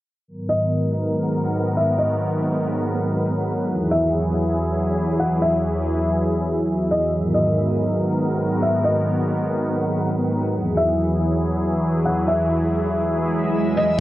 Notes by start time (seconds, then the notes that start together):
0.27 G#2 D#3 F#3 B3 G#4 A#4 F#5
0.48 D#5
1.77 E5
1.99 D#5
3.70 E2 E3 E4 G#4 E5
3.92 E5
5.20 F#5
5.42 E5
6.91 D#5
7.12 G#2 D#3 B3 A#4 F#5
7.34 D#5
8.62 E5
8.84 D#5
10.56 E2 E3 F#3 E4 G#4 E5
10.77 E5
12.05 F#5
12.27 E5, swell
13.77 D#5